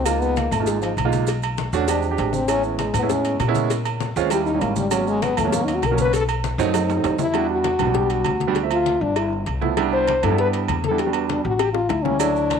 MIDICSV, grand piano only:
0, 0, Header, 1, 2, 480
1, 0, Start_track
1, 0, Tempo, 303644
1, 101, Time_signature, 4, 2, 24, 8
1, 19913, End_track
2, 0, Start_track
2, 0, Title_t, "Grand piano"
2, 0, Program_c, 0, 0
2, 99, Note_on_c, 0, 58, 69
2, 107, Note_on_c, 0, 56, 72
2, 112, Note_on_c, 0, 63, 70
2, 114, Note_on_c, 0, 65, 84
2, 688, Note_off_c, 0, 58, 0
2, 691, Note_off_c, 0, 56, 0
2, 694, Note_off_c, 0, 63, 0
2, 695, Note_off_c, 0, 65, 0
2, 945, Note_on_c, 0, 63, 76
2, 951, Note_on_c, 0, 56, 77
2, 951, Note_on_c, 0, 58, 70
2, 951, Note_on_c, 0, 65, 84
2, 1447, Note_off_c, 0, 63, 0
2, 1449, Note_off_c, 0, 56, 0
2, 1449, Note_off_c, 0, 58, 0
2, 1449, Note_off_c, 0, 65, 0
2, 1658, Note_on_c, 0, 58, 90
2, 1661, Note_on_c, 0, 56, 97
2, 1664, Note_on_c, 0, 65, 104
2, 1667, Note_on_c, 0, 63, 87
2, 2019, Note_off_c, 0, 58, 0
2, 2021, Note_off_c, 0, 56, 0
2, 2022, Note_off_c, 0, 65, 0
2, 2024, Note_off_c, 0, 63, 0
2, 2742, Note_on_c, 0, 57, 96
2, 2745, Note_on_c, 0, 66, 112
2, 2749, Note_on_c, 0, 62, 91
2, 2751, Note_on_c, 0, 61, 94
2, 2909, Note_off_c, 0, 57, 0
2, 2910, Note_off_c, 0, 66, 0
2, 2912, Note_off_c, 0, 62, 0
2, 2913, Note_off_c, 0, 61, 0
2, 2982, Note_on_c, 0, 56, 85
2, 2982, Note_on_c, 0, 62, 71
2, 2983, Note_on_c, 0, 60, 71
2, 2988, Note_on_c, 0, 67, 87
2, 3233, Note_off_c, 0, 56, 0
2, 3233, Note_off_c, 0, 60, 0
2, 3233, Note_off_c, 0, 62, 0
2, 3236, Note_off_c, 0, 67, 0
2, 3338, Note_on_c, 0, 60, 68
2, 3338, Note_on_c, 0, 67, 81
2, 3343, Note_on_c, 0, 56, 67
2, 3343, Note_on_c, 0, 62, 71
2, 3759, Note_off_c, 0, 60, 0
2, 3759, Note_off_c, 0, 67, 0
2, 3761, Note_off_c, 0, 56, 0
2, 3761, Note_off_c, 0, 62, 0
2, 3933, Note_on_c, 0, 56, 72
2, 3939, Note_on_c, 0, 59, 68
2, 3940, Note_on_c, 0, 64, 81
2, 3943, Note_on_c, 0, 61, 67
2, 4524, Note_off_c, 0, 56, 0
2, 4527, Note_off_c, 0, 59, 0
2, 4528, Note_off_c, 0, 64, 0
2, 4529, Note_off_c, 0, 61, 0
2, 4779, Note_on_c, 0, 61, 72
2, 4780, Note_on_c, 0, 59, 70
2, 4783, Note_on_c, 0, 56, 83
2, 4786, Note_on_c, 0, 64, 90
2, 5283, Note_off_c, 0, 61, 0
2, 5284, Note_off_c, 0, 59, 0
2, 5286, Note_off_c, 0, 56, 0
2, 5287, Note_off_c, 0, 64, 0
2, 5502, Note_on_c, 0, 56, 91
2, 5502, Note_on_c, 0, 61, 95
2, 5505, Note_on_c, 0, 59, 89
2, 5512, Note_on_c, 0, 64, 116
2, 5861, Note_off_c, 0, 56, 0
2, 5861, Note_off_c, 0, 61, 0
2, 5863, Note_off_c, 0, 59, 0
2, 5866, Note_off_c, 0, 64, 0
2, 6585, Note_on_c, 0, 56, 103
2, 6585, Note_on_c, 0, 60, 99
2, 6590, Note_on_c, 0, 61, 96
2, 6592, Note_on_c, 0, 65, 112
2, 6750, Note_off_c, 0, 56, 0
2, 6750, Note_off_c, 0, 60, 0
2, 6753, Note_off_c, 0, 61, 0
2, 6754, Note_off_c, 0, 65, 0
2, 6809, Note_on_c, 0, 55, 81
2, 6814, Note_on_c, 0, 58, 76
2, 6819, Note_on_c, 0, 61, 69
2, 6824, Note_on_c, 0, 64, 88
2, 7066, Note_off_c, 0, 55, 0
2, 7069, Note_off_c, 0, 58, 0
2, 7072, Note_off_c, 0, 61, 0
2, 7074, Note_off_c, 0, 64, 0
2, 7178, Note_on_c, 0, 64, 76
2, 7180, Note_on_c, 0, 55, 72
2, 7180, Note_on_c, 0, 58, 67
2, 7185, Note_on_c, 0, 61, 71
2, 7599, Note_off_c, 0, 64, 0
2, 7600, Note_off_c, 0, 55, 0
2, 7600, Note_off_c, 0, 58, 0
2, 7602, Note_off_c, 0, 61, 0
2, 7765, Note_on_c, 0, 58, 70
2, 7770, Note_on_c, 0, 54, 74
2, 7772, Note_on_c, 0, 59, 68
2, 7772, Note_on_c, 0, 61, 86
2, 8360, Note_off_c, 0, 58, 0
2, 8363, Note_off_c, 0, 54, 0
2, 8363, Note_off_c, 0, 59, 0
2, 8364, Note_off_c, 0, 61, 0
2, 8609, Note_on_c, 0, 54, 86
2, 8609, Note_on_c, 0, 58, 75
2, 8613, Note_on_c, 0, 59, 70
2, 8613, Note_on_c, 0, 61, 89
2, 9118, Note_off_c, 0, 54, 0
2, 9118, Note_off_c, 0, 58, 0
2, 9120, Note_off_c, 0, 59, 0
2, 9120, Note_off_c, 0, 61, 0
2, 9346, Note_on_c, 0, 58, 82
2, 9352, Note_on_c, 0, 59, 73
2, 9353, Note_on_c, 0, 54, 90
2, 9358, Note_on_c, 0, 61, 91
2, 9702, Note_off_c, 0, 58, 0
2, 9705, Note_off_c, 0, 59, 0
2, 9706, Note_off_c, 0, 54, 0
2, 9709, Note_off_c, 0, 61, 0
2, 10419, Note_on_c, 0, 57, 95
2, 10421, Note_on_c, 0, 60, 97
2, 10426, Note_on_c, 0, 63, 115
2, 10427, Note_on_c, 0, 54, 112
2, 10587, Note_off_c, 0, 57, 0
2, 10588, Note_off_c, 0, 60, 0
2, 10590, Note_off_c, 0, 63, 0
2, 10591, Note_off_c, 0, 54, 0
2, 10635, Note_on_c, 0, 54, 85
2, 10644, Note_on_c, 0, 60, 73
2, 10646, Note_on_c, 0, 63, 94
2, 10647, Note_on_c, 0, 57, 77
2, 10899, Note_off_c, 0, 54, 0
2, 10903, Note_off_c, 0, 60, 0
2, 10905, Note_off_c, 0, 57, 0
2, 10905, Note_off_c, 0, 63, 0
2, 11004, Note_on_c, 0, 57, 66
2, 11007, Note_on_c, 0, 60, 73
2, 11009, Note_on_c, 0, 54, 76
2, 11015, Note_on_c, 0, 63, 83
2, 11432, Note_off_c, 0, 57, 0
2, 11433, Note_off_c, 0, 60, 0
2, 11434, Note_off_c, 0, 54, 0
2, 11437, Note_off_c, 0, 63, 0
2, 11596, Note_on_c, 0, 59, 73
2, 11603, Note_on_c, 0, 55, 83
2, 11605, Note_on_c, 0, 66, 95
2, 11610, Note_on_c, 0, 62, 73
2, 12112, Note_off_c, 0, 59, 0
2, 12115, Note_off_c, 0, 55, 0
2, 12116, Note_off_c, 0, 66, 0
2, 12119, Note_off_c, 0, 62, 0
2, 12319, Note_on_c, 0, 55, 88
2, 12326, Note_on_c, 0, 59, 75
2, 12328, Note_on_c, 0, 62, 77
2, 12330, Note_on_c, 0, 66, 88
2, 12410, Note_off_c, 0, 55, 0
2, 12415, Note_off_c, 0, 59, 0
2, 12415, Note_off_c, 0, 62, 0
2, 12418, Note_off_c, 0, 66, 0
2, 12434, Note_on_c, 0, 55, 83
2, 12438, Note_on_c, 0, 62, 72
2, 12439, Note_on_c, 0, 59, 73
2, 12443, Note_on_c, 0, 66, 87
2, 13119, Note_off_c, 0, 55, 0
2, 13121, Note_off_c, 0, 59, 0
2, 13121, Note_off_c, 0, 62, 0
2, 13123, Note_off_c, 0, 66, 0
2, 13395, Note_on_c, 0, 59, 88
2, 13402, Note_on_c, 0, 62, 88
2, 13403, Note_on_c, 0, 55, 102
2, 13405, Note_on_c, 0, 66, 106
2, 13527, Note_off_c, 0, 59, 0
2, 13531, Note_off_c, 0, 55, 0
2, 13531, Note_off_c, 0, 62, 0
2, 13532, Note_off_c, 0, 66, 0
2, 13635, Note_on_c, 0, 57, 73
2, 13640, Note_on_c, 0, 53, 76
2, 13645, Note_on_c, 0, 76, 87
2, 13647, Note_on_c, 0, 60, 70
2, 14319, Note_off_c, 0, 57, 0
2, 14322, Note_off_c, 0, 53, 0
2, 14324, Note_off_c, 0, 76, 0
2, 14325, Note_off_c, 0, 60, 0
2, 15197, Note_on_c, 0, 64, 99
2, 15199, Note_on_c, 0, 57, 84
2, 15201, Note_on_c, 0, 59, 77
2, 15202, Note_on_c, 0, 53, 88
2, 15376, Note_off_c, 0, 64, 0
2, 15377, Note_off_c, 0, 57, 0
2, 15378, Note_off_c, 0, 59, 0
2, 15379, Note_off_c, 0, 53, 0
2, 15445, Note_on_c, 0, 62, 90
2, 15446, Note_on_c, 0, 55, 102
2, 15447, Note_on_c, 0, 59, 89
2, 15449, Note_on_c, 0, 64, 109
2, 15956, Note_off_c, 0, 62, 0
2, 15957, Note_off_c, 0, 55, 0
2, 15957, Note_off_c, 0, 59, 0
2, 15958, Note_off_c, 0, 64, 0
2, 16178, Note_on_c, 0, 55, 83
2, 16179, Note_on_c, 0, 62, 78
2, 16182, Note_on_c, 0, 64, 98
2, 16185, Note_on_c, 0, 59, 81
2, 16263, Note_off_c, 0, 55, 0
2, 16263, Note_off_c, 0, 62, 0
2, 16265, Note_off_c, 0, 59, 0
2, 16265, Note_off_c, 0, 64, 0
2, 16288, Note_on_c, 0, 59, 79
2, 16295, Note_on_c, 0, 55, 84
2, 16295, Note_on_c, 0, 62, 80
2, 16299, Note_on_c, 0, 64, 93
2, 16966, Note_off_c, 0, 59, 0
2, 16969, Note_off_c, 0, 55, 0
2, 16969, Note_off_c, 0, 62, 0
2, 16971, Note_off_c, 0, 64, 0
2, 17244, Note_on_c, 0, 55, 84
2, 17247, Note_on_c, 0, 59, 76
2, 17250, Note_on_c, 0, 64, 92
2, 17254, Note_on_c, 0, 62, 75
2, 17371, Note_off_c, 0, 55, 0
2, 17373, Note_off_c, 0, 59, 0
2, 17375, Note_off_c, 0, 64, 0
2, 17376, Note_off_c, 0, 62, 0
2, 17490, Note_on_c, 0, 59, 69
2, 17492, Note_on_c, 0, 66, 83
2, 17497, Note_on_c, 0, 55, 81
2, 17497, Note_on_c, 0, 62, 72
2, 18167, Note_off_c, 0, 59, 0
2, 18167, Note_off_c, 0, 66, 0
2, 18170, Note_off_c, 0, 55, 0
2, 18170, Note_off_c, 0, 62, 0
2, 19042, Note_on_c, 0, 55, 72
2, 19047, Note_on_c, 0, 58, 74
2, 19047, Note_on_c, 0, 64, 79
2, 19053, Note_on_c, 0, 61, 70
2, 19218, Note_off_c, 0, 55, 0
2, 19221, Note_off_c, 0, 58, 0
2, 19221, Note_off_c, 0, 64, 0
2, 19224, Note_off_c, 0, 61, 0
2, 19285, Note_on_c, 0, 54, 80
2, 19289, Note_on_c, 0, 57, 76
2, 19289, Note_on_c, 0, 64, 98
2, 19297, Note_on_c, 0, 73, 76
2, 19796, Note_off_c, 0, 54, 0
2, 19798, Note_off_c, 0, 57, 0
2, 19798, Note_off_c, 0, 64, 0
2, 19802, Note_off_c, 0, 73, 0
2, 19913, End_track
0, 0, End_of_file